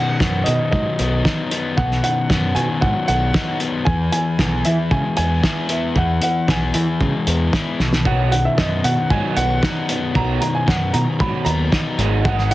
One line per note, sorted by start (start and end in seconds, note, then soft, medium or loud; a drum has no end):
0.00 0.98 B2 medium
0.00 0.45 D#3 medium
0.00 0.41 F#5 medium
0.20 0.43 F#2 medium
0.20 0.99 B3 medium
0.20 kick loud
0.20 snare medium
0.44 0.58 B2 medium
0.44 1.77 D#3 medium
0.44 0.70 D#5 medium
0.44 closed hi-hat medium
0.71 0.84 G#2 medium
0.71 2.04 F#3 medium
0.71 1.46 D#5 medium
0.71 kick medium
0.99 1.21 B1 medium
0.99 1.51 B3 medium
0.99 closed hi-hat medium
1.25 2.56 D#4 medium
1.25 kick loud
1.25 snare medium
1.51 2.29 B3 medium
1.51 closed hi-hat medium
1.77 2.00 B1 medium
1.77 3.08 B2 medium
1.77 2.02 F#5 medium
1.77 kick loud
1.91 snare soft
2.03 2.55 D#3 medium
2.03 2.58 F#5 medium
2.03 closed hi-hat medium
2.29 2.52 F#2 medium
2.29 3.08 B3 medium
2.29 kick medium
2.29 snare loud
2.55 2.67 B2 loud
2.55 3.86 D#3 medium
2.55 2.82 G#5 medium
2.55 closed hi-hat medium
2.81 2.93 G#2 medium
2.81 3.87 F#3 medium
2.81 3.06 F#5 medium
2.81 kick loud
3.08 3.31 B1 medium
3.08 3.59 B3 medium
3.08 3.57 F#5 medium
3.08 closed hi-hat medium
3.34 3.87 D#4 medium
3.34 kick loud
3.34 snare loud
3.60 4.39 B3 medium
3.60 closed hi-hat medium
3.85 4.09 E2 medium
3.85 4.12 E3 medium
3.85 4.11 G#5 medium
3.85 kick loud
4.12 4.64 E3 medium
4.12 4.67 G#5 loud
4.12 closed hi-hat medium
4.39 4.61 B1 medium
4.39 5.17 B3 medium
4.39 kick loud
4.39 snare medium
4.65 5.94 E3 medium
4.65 4.77 E3 medium
4.65 4.92 E5 medium
4.65 closed hi-hat medium
4.91 5.02 C#3 medium
4.91 6.22 G#3 medium
4.91 5.15 G#5 medium
4.91 kick medium
5.17 5.40 E2 medium
5.17 5.69 B3 medium
5.17 5.66 G#5 loud
5.17 closed hi-hat medium
5.43 6.75 E4 medium
5.43 kick medium
5.43 snare loud
5.69 6.48 B3 medium
5.69 5.97 E5 medium
5.69 closed hi-hat medium
5.96 6.18 E2 medium
5.96 6.21 E3 medium
5.96 6.22 F#5 medium
5.96 kick loud
6.22 6.74 E3 medium
6.22 6.50 F#5 medium
6.22 closed hi-hat medium
6.48 6.71 B1 medium
6.48 7.27 B3 medium
6.48 7.50 G#5 medium
6.48 kick medium
6.48 snare loud
6.74 6.86 E3 medium
6.74 7.80 E3 medium
6.74 closed hi-hat medium
7.01 7.12 C#3 medium
7.01 7.79 G#3 medium
7.01 kick loud
7.27 7.49 E2 medium
7.27 8.58 B3 medium
7.27 closed hi-hat medium
7.53 7.80 E4 medium
7.53 kick loud
7.53 snare loud
7.80 8.46 B1 medium
7.80 8.05 B2 medium
7.80 snare medium
7.93 snare medium
8.05 8.30 B2 medium
8.05 9.37 B2 medium
8.05 8.31 D#3 medium
8.05 8.31 F#3 medium
8.05 8.30 F#5 medium
8.05 kick loud
8.32 8.55 B2 medium
8.32 8.56 D#3 medium
8.32 8.83 D#3 medium
8.32 8.45 F#5 medium
8.32 closed hi-hat medium
8.45 8.57 E5 medium
8.57 8.80 F#2 medium
8.57 8.82 B2 medium
8.57 8.82 D#3 medium
8.57 9.36 B3 medium
8.57 8.82 D#5 medium
8.57 kick loud
8.57 snare medium
8.84 8.95 B2 medium
8.84 9.08 B2 medium
8.84 10.15 D#3 medium
8.84 9.08 D#3 medium
8.84 9.11 F#5 medium
8.84 closed hi-hat medium
9.10 9.21 G#2 medium
9.10 9.35 B2 medium
9.10 9.35 D#3 medium
9.10 11.19 F#3 medium
9.10 9.36 F#3 loud
9.10 9.35 G#5 medium
9.10 kick loud
9.37 9.59 B1 medium
9.37 9.60 B2 medium
9.37 9.61 D#3 medium
9.37 9.88 B3 medium
9.37 9.85 F#5 loud
9.37 closed hi-hat medium
9.63 9.86 B2 medium
9.63 9.87 D#3 medium
9.63 11.71 D#4 medium
9.63 kick loud
9.63 snare loud
9.89 10.13 B2 medium
9.89 10.13 D#3 medium
9.89 10.66 B3 medium
9.89 closed hi-hat medium
10.15 10.38 B1 medium
10.15 11.46 B2 medium
10.15 10.40 B2 medium
10.15 10.40 D#3 medium
10.15 10.40 F#3 medium
10.15 10.39 A#5 medium
10.15 kick loud
10.41 10.65 B2 medium
10.41 10.92 D#3 medium
10.41 10.66 D#3 medium
10.41 10.55 A#5 medium
10.41 closed hi-hat medium
10.55 10.68 G#5 medium
10.67 10.90 F#2 medium
10.67 10.91 B2 medium
10.67 10.92 D#3 medium
10.67 11.46 B3 medium
10.67 10.95 F#5 medium
10.67 kick loud
10.67 snare loud
10.93 11.05 B2 loud
10.93 11.18 B2 medium
10.93 11.98 D#3 medium
10.93 11.18 D#3 medium
10.93 11.21 A#5 medium
10.93 closed hi-hat medium
11.19 11.31 G#2 medium
11.19 11.45 B2 medium
11.19 11.45 D#3 medium
11.19 12.02 F#3 medium
11.19 11.45 F#3 medium
11.19 11.48 B5 medium
11.19 kick loud
11.45 11.68 D#2 medium
11.45 11.70 B2 medium
11.45 11.71 D#3 medium
11.45 12.54 B3 medium
11.45 11.94 A#5 loud
11.45 closed hi-hat medium
11.72 11.97 B2 medium
11.72 11.97 D#3 medium
11.72 12.54 D#4 medium
11.72 kick medium
11.72 snare medium
11.98 12.54 G#1 medium
11.98 12.24 G#2 medium
11.98 12.24 D#3 medium
11.98 12.24 G#3 medium
11.98 closed hi-hat medium
12.25 12.54 G#2 medium
12.25 12.50 G#2 medium
12.25 12.50 D#3 medium
12.25 12.51 G#3 medium
12.25 12.49 F#5 medium
12.25 kick loud
12.38 snare soft
12.51 12.54 D#3 medium
12.51 12.54 F#5 loud
12.51 closed hi-hat medium